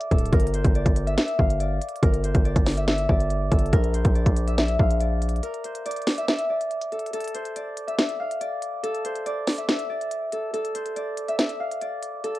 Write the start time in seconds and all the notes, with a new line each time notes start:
Already playing: A4 C5 D5 E5
0.01 closed hi-hat
0.11 D1 A4, kick, closed hi-hat
0.18 closed hi-hat
0.25 closed hi-hat
0.33 G1 A#4, kick, closed hi-hat
0.40 closed hi-hat
0.47 closed hi-hat
0.54 C5, closed hi-hat
0.64 G1, kick, closed hi-hat
0.75 D5, closed hi-hat
0.86 G1, kick, closed hi-hat
0.96 closed hi-hat
1.07 E5, closed hi-hat
1.17 E5, snare, closed hi-hat
1.28 closed hi-hat
1.39 G1 F5, kick
1.50 closed hi-hat
1.60 D5, closed hi-hat
1.81 closed hi-hat
1.89 closed hi-hat
1.96 closed hi-hat
2.03 G1 A#4, kick, closed hi-hat
2.14 closed hi-hat
2.24 C5, closed hi-hat
2.35 G1, kick, closed hi-hat
2.45 D5, closed hi-hat
2.56 G1, kick, closed hi-hat
2.66 snare, open hi-hat
2.77 E5, closed hi-hat
2.88 E5, snare, closed hi-hat
2.98 closed hi-hat
3.09 G1 D5, kick
3.20 closed hi-hat
3.30 closed hi-hat
3.51 G1 A4, kick, closed hi-hat
3.59 closed hi-hat
3.66 closed hi-hat
3.73 A#1 A#4, kick, closed hi-hat
3.84 closed hi-hat
3.94 C5, closed hi-hat
4.05 A#1, kick, closed hi-hat
4.15 D5, closed hi-hat
4.26 A#1, kick, closed hi-hat
4.37 closed hi-hat
4.47 E5, closed hi-hat
4.58 E5, snare, closed hi-hat
4.68 closed hi-hat
4.79 A#1 F5, kick
4.91 closed hi-hat
5.01 D5, closed hi-hat
5.22 closed hi-hat
5.29 closed hi-hat
5.36 closed hi-hat
5.43 A#4, closed hi-hat
5.54 closed hi-hat
5.64 C5, closed hi-hat
5.75 closed hi-hat
5.86 D5, closed hi-hat
5.91 closed hi-hat
5.96 closed hi-hat
6.02 closed hi-hat
6.07 snare, open hi-hat
6.18 E5, closed hi-hat
6.28 E5, snare, closed hi-hat
6.38 closed hi-hat
6.50 D5
6.61 closed hi-hat
6.71 closed hi-hat
6.81 closed hi-hat
6.92 A4, closed hi-hat
6.99 closed hi-hat
7.06 closed hi-hat
7.13 A4, closed hi-hat
7.20 closed hi-hat
7.24 closed hi-hat
7.28 closed hi-hat
7.35 C5, closed hi-hat
7.45 closed hi-hat
7.56 D5, closed hi-hat
7.77 closed hi-hat
7.88 E5, closed hi-hat
7.98 E5, snare, closed hi-hat
8.09 closed hi-hat
8.20 F5
8.31 closed hi-hat
8.41 D5, closed hi-hat
8.62 closed hi-hat
8.83 A4, closed hi-hat
8.94 closed hi-hat
9.05 C5, closed hi-hat
9.15 closed hi-hat
9.26 D5, closed hi-hat
9.47 snare, open hi-hat
9.58 E5, closed hi-hat
9.69 E5, snare, closed hi-hat
9.79 closed hi-hat
9.90 D5
10.01 closed hi-hat
10.11 closed hi-hat
10.32 A4, closed hi-hat
10.53 A4, closed hi-hat
10.65 closed hi-hat
10.75 C5, closed hi-hat
10.86 closed hi-hat
10.96 D5, closed hi-hat
11.17 closed hi-hat
11.28 E5, closed hi-hat
11.39 E5, snare, closed hi-hat
11.49 closed hi-hat
11.60 F5
11.71 closed hi-hat
11.81 D5, closed hi-hat
12.03 closed hi-hat
12.24 A4, closed hi-hat
12.35 closed hi-hat